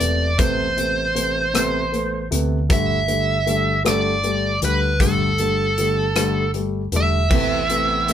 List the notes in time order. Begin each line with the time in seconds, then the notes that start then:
Already playing: D5
0.00 E1 C3 A3 B3, closed hi-hat
0.38 A1 C3 A3 B3 C5, kick, closed hi-hat
0.77 C3 A3 B3, closed hi-hat
1.15 C3 A3 B3, closed hi-hat
1.53 C3 A3 B3, cross-stick, closed hi-hat
1.92 A3 B3, closed hi-hat
2.31 D2 C3 A3 B3, closed hi-hat
2.69 G1 D3 G3 A3 E5, kick, closed hi-hat
3.08 D3 G3 A3, closed hi-hat
3.46 D3 G3 A3, closed hi-hat
3.84 D3 G3 A3 D5, cross-stick, closed hi-hat
4.24 G3 A3, closed hi-hat
4.62 D2 D3 G3 A3 B4, closed hi-hat
5.00 G1 D3 G3 A3 A4, kick, closed hi-hat
5.38 D3 G3 A3, closed hi-hat
5.78 D3 G3 A3, closed hi-hat
6.15 D3 G3 A3, cross-stick, closed hi-hat
6.54 G3 A3, closed hi-hat
6.92 E1 D3 G3 A3, closed hi-hat
6.96 E5
7.30 A1 C3 E3 A3 B3 C4, kick, crash
7.49 E3
7.69 C3 A3 B3 C4, closed hi-hat
7.88 B3
8.06 C3 A3 B3 C4, closed hi-hat